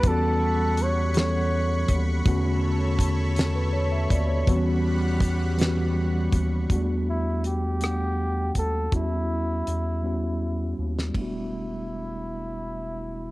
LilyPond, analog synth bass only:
\new Staff \with { instrumentName = "Analog synth bass" } { \clef bass \time 6/8 \key e \dorian \tempo 4. = 54 e,2~ e,8 dis,8 | e,2~ e,8 dis,8 | e,2~ e,8 dis,8 | e,2~ e,8 dis,8 |
e,4 e,4. dis,8 | e,,2. | }